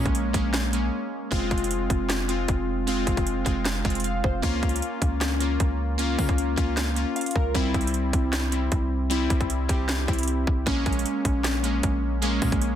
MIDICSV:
0, 0, Header, 1, 4, 480
1, 0, Start_track
1, 0, Key_signature, -4, "minor"
1, 0, Tempo, 389610
1, 1621, Time_signature, 4, 2, 24, 8
1, 15713, End_track
2, 0, Start_track
2, 0, Title_t, "Synth keys"
2, 0, Program_c, 0, 88
2, 0, Control_c, 0, 64, 127
2, 0, Note_on_c, 0, 56, 120
2, 0, Note_on_c, 0, 58, 109
2, 0, Note_on_c, 0, 61, 124
2, 320, Note_off_c, 0, 56, 0
2, 325, Note_off_c, 0, 58, 0
2, 330, Note_off_c, 0, 61, 0
2, 410, Note_on_c, 0, 56, 86
2, 420, Note_on_c, 0, 58, 83
2, 430, Note_on_c, 0, 61, 97
2, 831, Note_off_c, 0, 56, 0
2, 836, Note_off_c, 0, 58, 0
2, 841, Note_off_c, 0, 61, 0
2, 893, Note_on_c, 0, 56, 82
2, 903, Note_on_c, 0, 58, 76
2, 913, Note_on_c, 0, 61, 92
2, 1521, Note_off_c, 0, 56, 0
2, 1526, Note_off_c, 0, 58, 0
2, 1531, Note_off_c, 0, 61, 0
2, 1610, Note_on_c, 0, 56, 121
2, 1620, Note_on_c, 0, 60, 102
2, 1630, Note_on_c, 0, 65, 127
2, 1635, Control_c, 0, 64, 0
2, 1884, Control_c, 0, 64, 127
2, 2445, Note_off_c, 0, 56, 0
2, 2450, Note_off_c, 0, 60, 0
2, 2455, Note_off_c, 0, 65, 0
2, 2810, Note_on_c, 0, 56, 86
2, 2820, Note_on_c, 0, 60, 76
2, 2830, Note_on_c, 0, 65, 103
2, 3440, Note_off_c, 0, 56, 0
2, 3444, Note_off_c, 0, 60, 0
2, 3449, Note_off_c, 0, 65, 0
2, 3533, Note_on_c, 0, 56, 108
2, 3543, Note_on_c, 0, 60, 105
2, 3554, Note_on_c, 0, 65, 126
2, 4161, Note_off_c, 0, 56, 0
2, 4166, Note_off_c, 0, 60, 0
2, 4171, Note_off_c, 0, 65, 0
2, 4246, Note_on_c, 0, 56, 90
2, 4256, Note_on_c, 0, 60, 75
2, 4267, Note_on_c, 0, 65, 94
2, 4670, Note_off_c, 0, 56, 0
2, 4675, Note_off_c, 0, 60, 0
2, 4680, Note_off_c, 0, 65, 0
2, 4735, Note_on_c, 0, 56, 85
2, 4745, Note_on_c, 0, 60, 83
2, 4755, Note_on_c, 0, 65, 96
2, 4984, Note_on_c, 0, 77, 78
2, 5206, Note_off_c, 0, 77, 0
2, 5222, Note_on_c, 0, 72, 72
2, 5362, Note_off_c, 0, 56, 0
2, 5367, Note_off_c, 0, 60, 0
2, 5372, Note_off_c, 0, 65, 0
2, 5445, Note_off_c, 0, 72, 0
2, 5450, Note_on_c, 0, 58, 111
2, 5460, Note_on_c, 0, 61, 109
2, 5469, Note_on_c, 0, 65, 126
2, 5477, Control_c, 0, 64, 0
2, 5664, Control_c, 0, 64, 127
2, 6285, Note_off_c, 0, 58, 0
2, 6290, Note_off_c, 0, 61, 0
2, 6295, Note_off_c, 0, 65, 0
2, 6655, Note_on_c, 0, 58, 97
2, 6665, Note_on_c, 0, 61, 77
2, 6675, Note_on_c, 0, 65, 90
2, 7282, Note_off_c, 0, 58, 0
2, 7287, Note_off_c, 0, 61, 0
2, 7292, Note_off_c, 0, 65, 0
2, 7367, Note_on_c, 0, 58, 125
2, 7377, Note_on_c, 0, 61, 104
2, 7387, Note_on_c, 0, 65, 118
2, 7998, Note_off_c, 0, 58, 0
2, 8003, Note_off_c, 0, 61, 0
2, 8008, Note_off_c, 0, 65, 0
2, 8086, Note_on_c, 0, 58, 89
2, 8095, Note_on_c, 0, 61, 84
2, 8106, Note_on_c, 0, 65, 100
2, 8509, Note_off_c, 0, 58, 0
2, 8514, Note_off_c, 0, 61, 0
2, 8519, Note_off_c, 0, 65, 0
2, 8568, Note_on_c, 0, 58, 78
2, 8579, Note_on_c, 0, 61, 78
2, 8589, Note_on_c, 0, 65, 96
2, 8821, Note_on_c, 0, 77, 78
2, 9044, Note_off_c, 0, 77, 0
2, 9063, Note_on_c, 0, 70, 76
2, 9199, Note_off_c, 0, 58, 0
2, 9204, Note_off_c, 0, 61, 0
2, 9209, Note_off_c, 0, 65, 0
2, 9285, Note_off_c, 0, 70, 0
2, 9294, Note_on_c, 0, 55, 118
2, 9305, Note_on_c, 0, 60, 108
2, 9315, Note_on_c, 0, 64, 126
2, 9318, Control_c, 0, 64, 0
2, 9531, Control_c, 0, 64, 127
2, 10128, Note_off_c, 0, 55, 0
2, 10133, Note_off_c, 0, 60, 0
2, 10138, Note_off_c, 0, 64, 0
2, 10489, Note_on_c, 0, 55, 83
2, 10499, Note_on_c, 0, 60, 77
2, 10509, Note_on_c, 0, 64, 87
2, 11119, Note_off_c, 0, 55, 0
2, 11124, Note_off_c, 0, 60, 0
2, 11129, Note_off_c, 0, 64, 0
2, 11209, Note_on_c, 0, 55, 117
2, 11219, Note_on_c, 0, 60, 100
2, 11229, Note_on_c, 0, 64, 127
2, 11839, Note_off_c, 0, 55, 0
2, 11844, Note_off_c, 0, 60, 0
2, 11849, Note_off_c, 0, 64, 0
2, 11931, Note_on_c, 0, 55, 84
2, 11941, Note_on_c, 0, 60, 79
2, 11951, Note_on_c, 0, 67, 86
2, 12352, Note_off_c, 0, 55, 0
2, 12357, Note_off_c, 0, 60, 0
2, 12362, Note_off_c, 0, 67, 0
2, 12410, Note_on_c, 0, 55, 82
2, 12420, Note_on_c, 0, 60, 77
2, 12430, Note_on_c, 0, 64, 100
2, 13039, Note_off_c, 0, 55, 0
2, 13044, Note_off_c, 0, 60, 0
2, 13049, Note_off_c, 0, 64, 0
2, 13131, Note_on_c, 0, 56, 112
2, 13142, Note_on_c, 0, 58, 104
2, 13151, Note_on_c, 0, 61, 127
2, 13156, Control_c, 0, 64, 0
2, 13346, Control_c, 0, 64, 127
2, 13966, Note_off_c, 0, 56, 0
2, 13971, Note_off_c, 0, 58, 0
2, 13976, Note_off_c, 0, 61, 0
2, 14332, Note_on_c, 0, 56, 87
2, 14343, Note_on_c, 0, 58, 79
2, 14353, Note_on_c, 0, 61, 97
2, 14961, Note_off_c, 0, 56, 0
2, 14966, Note_off_c, 0, 58, 0
2, 14971, Note_off_c, 0, 61, 0
2, 15052, Note_on_c, 0, 56, 120
2, 15062, Note_on_c, 0, 58, 108
2, 15072, Note_on_c, 0, 61, 119
2, 15680, Note_off_c, 0, 56, 0
2, 15686, Note_off_c, 0, 58, 0
2, 15691, Note_off_c, 0, 61, 0
2, 15713, End_track
3, 0, Start_track
3, 0, Title_t, "808-style bass"
3, 0, Program_c, 1, 38
3, 68, Note_on_c, 1, 34, 101
3, 407, Note_off_c, 1, 34, 0
3, 420, Note_on_c, 1, 34, 104
3, 1112, Note_off_c, 1, 34, 0
3, 1621, Note_on_c, 1, 29, 105
3, 1852, Note_off_c, 1, 29, 0
3, 1861, Note_on_c, 1, 29, 103
3, 2322, Note_off_c, 1, 29, 0
3, 2341, Note_on_c, 1, 29, 101
3, 3032, Note_off_c, 1, 29, 0
3, 3062, Note_on_c, 1, 29, 102
3, 3752, Note_off_c, 1, 29, 0
3, 3782, Note_on_c, 1, 29, 101
3, 4242, Note_off_c, 1, 29, 0
3, 4261, Note_on_c, 1, 29, 108
3, 4722, Note_off_c, 1, 29, 0
3, 4742, Note_on_c, 1, 29, 106
3, 5202, Note_off_c, 1, 29, 0
3, 5223, Note_on_c, 1, 29, 105
3, 5452, Note_off_c, 1, 29, 0
3, 5461, Note_on_c, 1, 37, 112
3, 5691, Note_off_c, 1, 37, 0
3, 5701, Note_on_c, 1, 37, 104
3, 5931, Note_off_c, 1, 37, 0
3, 6180, Note_on_c, 1, 37, 106
3, 6872, Note_off_c, 1, 37, 0
3, 6901, Note_on_c, 1, 37, 106
3, 7592, Note_off_c, 1, 37, 0
3, 7620, Note_on_c, 1, 49, 109
3, 7743, Note_off_c, 1, 49, 0
3, 7748, Note_on_c, 1, 37, 104
3, 8087, Note_off_c, 1, 37, 0
3, 8101, Note_on_c, 1, 37, 101
3, 8684, Note_off_c, 1, 37, 0
3, 9062, Note_on_c, 1, 37, 107
3, 9292, Note_off_c, 1, 37, 0
3, 9301, Note_on_c, 1, 36, 110
3, 9531, Note_off_c, 1, 36, 0
3, 9540, Note_on_c, 1, 36, 103
3, 10002, Note_off_c, 1, 36, 0
3, 10020, Note_on_c, 1, 36, 105
3, 10712, Note_off_c, 1, 36, 0
3, 10740, Note_on_c, 1, 36, 104
3, 11432, Note_off_c, 1, 36, 0
3, 11460, Note_on_c, 1, 36, 104
3, 11921, Note_off_c, 1, 36, 0
3, 11941, Note_on_c, 1, 36, 102
3, 12402, Note_off_c, 1, 36, 0
3, 12422, Note_on_c, 1, 36, 105
3, 12882, Note_off_c, 1, 36, 0
3, 12902, Note_on_c, 1, 36, 107
3, 13132, Note_off_c, 1, 36, 0
3, 13141, Note_on_c, 1, 34, 110
3, 13371, Note_off_c, 1, 34, 0
3, 13381, Note_on_c, 1, 34, 105
3, 13611, Note_off_c, 1, 34, 0
3, 13860, Note_on_c, 1, 34, 103
3, 14552, Note_off_c, 1, 34, 0
3, 14581, Note_on_c, 1, 34, 103
3, 15272, Note_off_c, 1, 34, 0
3, 15300, Note_on_c, 1, 46, 106
3, 15423, Note_off_c, 1, 46, 0
3, 15428, Note_on_c, 1, 34, 104
3, 15713, Note_off_c, 1, 34, 0
3, 15713, End_track
4, 0, Start_track
4, 0, Title_t, "Drums"
4, 68, Note_on_c, 9, 36, 92
4, 69, Note_on_c, 9, 42, 38
4, 183, Note_off_c, 9, 42, 0
4, 183, Note_on_c, 9, 42, 83
4, 191, Note_off_c, 9, 36, 0
4, 306, Note_off_c, 9, 42, 0
4, 421, Note_on_c, 9, 36, 90
4, 422, Note_on_c, 9, 42, 82
4, 544, Note_off_c, 9, 36, 0
4, 545, Note_off_c, 9, 42, 0
4, 659, Note_on_c, 9, 39, 100
4, 660, Note_on_c, 9, 38, 124
4, 661, Note_on_c, 9, 42, 90
4, 783, Note_off_c, 9, 39, 0
4, 784, Note_off_c, 9, 38, 0
4, 784, Note_off_c, 9, 42, 0
4, 901, Note_on_c, 9, 42, 70
4, 1024, Note_off_c, 9, 42, 0
4, 1621, Note_on_c, 9, 36, 114
4, 1622, Note_on_c, 9, 42, 74
4, 1745, Note_off_c, 9, 36, 0
4, 1745, Note_off_c, 9, 42, 0
4, 1861, Note_on_c, 9, 36, 93
4, 1862, Note_on_c, 9, 42, 41
4, 1942, Note_off_c, 9, 42, 0
4, 1942, Note_on_c, 9, 42, 54
4, 1984, Note_off_c, 9, 36, 0
4, 2022, Note_off_c, 9, 42, 0
4, 2022, Note_on_c, 9, 42, 67
4, 2103, Note_off_c, 9, 42, 0
4, 2103, Note_on_c, 9, 42, 82
4, 2226, Note_off_c, 9, 42, 0
4, 2341, Note_on_c, 9, 36, 94
4, 2343, Note_on_c, 9, 42, 85
4, 2464, Note_off_c, 9, 36, 0
4, 2466, Note_off_c, 9, 42, 0
4, 2580, Note_on_c, 9, 39, 103
4, 2581, Note_on_c, 9, 38, 125
4, 2582, Note_on_c, 9, 42, 93
4, 2703, Note_off_c, 9, 39, 0
4, 2704, Note_off_c, 9, 38, 0
4, 2705, Note_off_c, 9, 42, 0
4, 2820, Note_on_c, 9, 42, 73
4, 2943, Note_off_c, 9, 42, 0
4, 3060, Note_on_c, 9, 42, 76
4, 3062, Note_on_c, 9, 36, 90
4, 3183, Note_off_c, 9, 42, 0
4, 3185, Note_off_c, 9, 36, 0
4, 3542, Note_on_c, 9, 42, 77
4, 3665, Note_off_c, 9, 42, 0
4, 3782, Note_on_c, 9, 36, 89
4, 3782, Note_on_c, 9, 42, 67
4, 3905, Note_off_c, 9, 36, 0
4, 3906, Note_off_c, 9, 42, 0
4, 3909, Note_on_c, 9, 36, 92
4, 3910, Note_on_c, 9, 42, 39
4, 4024, Note_off_c, 9, 42, 0
4, 4024, Note_on_c, 9, 42, 82
4, 4032, Note_off_c, 9, 36, 0
4, 4147, Note_off_c, 9, 42, 0
4, 4261, Note_on_c, 9, 36, 90
4, 4263, Note_on_c, 9, 42, 83
4, 4384, Note_off_c, 9, 36, 0
4, 4386, Note_off_c, 9, 42, 0
4, 4501, Note_on_c, 9, 39, 101
4, 4502, Note_on_c, 9, 38, 120
4, 4502, Note_on_c, 9, 42, 89
4, 4624, Note_off_c, 9, 39, 0
4, 4625, Note_off_c, 9, 38, 0
4, 4626, Note_off_c, 9, 42, 0
4, 4742, Note_on_c, 9, 36, 84
4, 4742, Note_on_c, 9, 42, 45
4, 4807, Note_off_c, 9, 42, 0
4, 4807, Note_on_c, 9, 42, 55
4, 4865, Note_off_c, 9, 36, 0
4, 4870, Note_off_c, 9, 42, 0
4, 4870, Note_on_c, 9, 42, 67
4, 4926, Note_off_c, 9, 42, 0
4, 4926, Note_on_c, 9, 42, 77
4, 4981, Note_off_c, 9, 42, 0
4, 4981, Note_on_c, 9, 42, 77
4, 5104, Note_off_c, 9, 42, 0
4, 5223, Note_on_c, 9, 36, 98
4, 5346, Note_off_c, 9, 36, 0
4, 5461, Note_on_c, 9, 36, 112
4, 5461, Note_on_c, 9, 42, 74
4, 5584, Note_off_c, 9, 42, 0
4, 5585, Note_off_c, 9, 36, 0
4, 5701, Note_on_c, 9, 36, 89
4, 5701, Note_on_c, 9, 42, 40
4, 5781, Note_off_c, 9, 42, 0
4, 5781, Note_on_c, 9, 42, 53
4, 5824, Note_off_c, 9, 36, 0
4, 5861, Note_off_c, 9, 42, 0
4, 5861, Note_on_c, 9, 42, 67
4, 5942, Note_off_c, 9, 42, 0
4, 5942, Note_on_c, 9, 42, 81
4, 6065, Note_off_c, 9, 42, 0
4, 6180, Note_on_c, 9, 36, 92
4, 6182, Note_on_c, 9, 42, 82
4, 6304, Note_off_c, 9, 36, 0
4, 6305, Note_off_c, 9, 42, 0
4, 6419, Note_on_c, 9, 39, 102
4, 6420, Note_on_c, 9, 38, 121
4, 6421, Note_on_c, 9, 42, 93
4, 6542, Note_off_c, 9, 39, 0
4, 6543, Note_off_c, 9, 38, 0
4, 6544, Note_off_c, 9, 42, 0
4, 6659, Note_on_c, 9, 42, 73
4, 6782, Note_off_c, 9, 42, 0
4, 6899, Note_on_c, 9, 42, 76
4, 6901, Note_on_c, 9, 36, 90
4, 7023, Note_off_c, 9, 42, 0
4, 7024, Note_off_c, 9, 36, 0
4, 7381, Note_on_c, 9, 42, 73
4, 7504, Note_off_c, 9, 42, 0
4, 7621, Note_on_c, 9, 36, 91
4, 7622, Note_on_c, 9, 42, 66
4, 7622, Note_on_c, 9, 46, 69
4, 7744, Note_off_c, 9, 36, 0
4, 7745, Note_off_c, 9, 42, 0
4, 7745, Note_off_c, 9, 46, 0
4, 7748, Note_on_c, 9, 36, 93
4, 7748, Note_on_c, 9, 42, 39
4, 7863, Note_off_c, 9, 42, 0
4, 7863, Note_on_c, 9, 42, 83
4, 7871, Note_off_c, 9, 36, 0
4, 7986, Note_off_c, 9, 42, 0
4, 8101, Note_on_c, 9, 36, 92
4, 8102, Note_on_c, 9, 42, 80
4, 8224, Note_off_c, 9, 36, 0
4, 8225, Note_off_c, 9, 42, 0
4, 8339, Note_on_c, 9, 39, 101
4, 8341, Note_on_c, 9, 38, 122
4, 8341, Note_on_c, 9, 42, 91
4, 8463, Note_off_c, 9, 39, 0
4, 8464, Note_off_c, 9, 38, 0
4, 8464, Note_off_c, 9, 42, 0
4, 8580, Note_on_c, 9, 42, 70
4, 8703, Note_off_c, 9, 42, 0
4, 8822, Note_on_c, 9, 42, 67
4, 8884, Note_off_c, 9, 42, 0
4, 8884, Note_on_c, 9, 42, 67
4, 8949, Note_off_c, 9, 42, 0
4, 8949, Note_on_c, 9, 42, 68
4, 9005, Note_off_c, 9, 42, 0
4, 9005, Note_on_c, 9, 42, 65
4, 9062, Note_on_c, 9, 36, 96
4, 9128, Note_off_c, 9, 42, 0
4, 9185, Note_off_c, 9, 36, 0
4, 9301, Note_on_c, 9, 36, 117
4, 9301, Note_on_c, 9, 42, 75
4, 9424, Note_off_c, 9, 36, 0
4, 9424, Note_off_c, 9, 42, 0
4, 9540, Note_on_c, 9, 36, 93
4, 9540, Note_on_c, 9, 42, 40
4, 9621, Note_off_c, 9, 42, 0
4, 9621, Note_on_c, 9, 42, 53
4, 9663, Note_off_c, 9, 36, 0
4, 9701, Note_off_c, 9, 42, 0
4, 9701, Note_on_c, 9, 42, 66
4, 9782, Note_off_c, 9, 42, 0
4, 9782, Note_on_c, 9, 42, 83
4, 9905, Note_off_c, 9, 42, 0
4, 10020, Note_on_c, 9, 36, 91
4, 10021, Note_on_c, 9, 42, 82
4, 10143, Note_off_c, 9, 36, 0
4, 10144, Note_off_c, 9, 42, 0
4, 10258, Note_on_c, 9, 39, 102
4, 10259, Note_on_c, 9, 38, 127
4, 10260, Note_on_c, 9, 42, 90
4, 10382, Note_off_c, 9, 39, 0
4, 10383, Note_off_c, 9, 38, 0
4, 10383, Note_off_c, 9, 42, 0
4, 10499, Note_on_c, 9, 42, 72
4, 10623, Note_off_c, 9, 42, 0
4, 10739, Note_on_c, 9, 42, 78
4, 10741, Note_on_c, 9, 36, 89
4, 10862, Note_off_c, 9, 42, 0
4, 10864, Note_off_c, 9, 36, 0
4, 11221, Note_on_c, 9, 42, 75
4, 11344, Note_off_c, 9, 42, 0
4, 11461, Note_on_c, 9, 36, 93
4, 11461, Note_on_c, 9, 42, 66
4, 11584, Note_off_c, 9, 36, 0
4, 11584, Note_off_c, 9, 42, 0
4, 11588, Note_on_c, 9, 36, 93
4, 11588, Note_on_c, 9, 42, 37
4, 11702, Note_off_c, 9, 42, 0
4, 11702, Note_on_c, 9, 42, 81
4, 11711, Note_off_c, 9, 36, 0
4, 11825, Note_off_c, 9, 42, 0
4, 11941, Note_on_c, 9, 36, 91
4, 11942, Note_on_c, 9, 42, 82
4, 12064, Note_off_c, 9, 36, 0
4, 12065, Note_off_c, 9, 42, 0
4, 12180, Note_on_c, 9, 39, 105
4, 12181, Note_on_c, 9, 38, 121
4, 12182, Note_on_c, 9, 42, 92
4, 12303, Note_off_c, 9, 39, 0
4, 12304, Note_off_c, 9, 38, 0
4, 12305, Note_off_c, 9, 42, 0
4, 12422, Note_on_c, 9, 36, 85
4, 12422, Note_on_c, 9, 42, 44
4, 12485, Note_off_c, 9, 42, 0
4, 12485, Note_on_c, 9, 42, 53
4, 12545, Note_off_c, 9, 36, 0
4, 12548, Note_off_c, 9, 42, 0
4, 12548, Note_on_c, 9, 42, 65
4, 12605, Note_off_c, 9, 42, 0
4, 12605, Note_on_c, 9, 42, 79
4, 12659, Note_off_c, 9, 42, 0
4, 12659, Note_on_c, 9, 42, 77
4, 12783, Note_off_c, 9, 42, 0
4, 12902, Note_on_c, 9, 36, 100
4, 13025, Note_off_c, 9, 36, 0
4, 13141, Note_on_c, 9, 36, 117
4, 13141, Note_on_c, 9, 42, 74
4, 13264, Note_off_c, 9, 36, 0
4, 13264, Note_off_c, 9, 42, 0
4, 13380, Note_on_c, 9, 36, 93
4, 13380, Note_on_c, 9, 42, 41
4, 13461, Note_off_c, 9, 42, 0
4, 13461, Note_on_c, 9, 42, 53
4, 13504, Note_off_c, 9, 36, 0
4, 13541, Note_off_c, 9, 42, 0
4, 13541, Note_on_c, 9, 42, 66
4, 13621, Note_off_c, 9, 42, 0
4, 13621, Note_on_c, 9, 42, 81
4, 13744, Note_off_c, 9, 42, 0
4, 13860, Note_on_c, 9, 36, 92
4, 13861, Note_on_c, 9, 42, 81
4, 13983, Note_off_c, 9, 36, 0
4, 13984, Note_off_c, 9, 42, 0
4, 14097, Note_on_c, 9, 39, 99
4, 14098, Note_on_c, 9, 38, 124
4, 14099, Note_on_c, 9, 42, 94
4, 14220, Note_off_c, 9, 39, 0
4, 14221, Note_off_c, 9, 38, 0
4, 14222, Note_off_c, 9, 42, 0
4, 14339, Note_on_c, 9, 42, 72
4, 14462, Note_off_c, 9, 42, 0
4, 14579, Note_on_c, 9, 42, 77
4, 14580, Note_on_c, 9, 36, 88
4, 14702, Note_off_c, 9, 42, 0
4, 14704, Note_off_c, 9, 36, 0
4, 15060, Note_on_c, 9, 42, 75
4, 15183, Note_off_c, 9, 42, 0
4, 15300, Note_on_c, 9, 36, 93
4, 15300, Note_on_c, 9, 42, 65
4, 15300, Note_on_c, 9, 46, 69
4, 15423, Note_off_c, 9, 36, 0
4, 15423, Note_off_c, 9, 42, 0
4, 15424, Note_off_c, 9, 46, 0
4, 15428, Note_on_c, 9, 36, 91
4, 15428, Note_on_c, 9, 42, 37
4, 15542, Note_off_c, 9, 42, 0
4, 15542, Note_on_c, 9, 42, 81
4, 15551, Note_off_c, 9, 36, 0
4, 15665, Note_off_c, 9, 42, 0
4, 15713, End_track
0, 0, End_of_file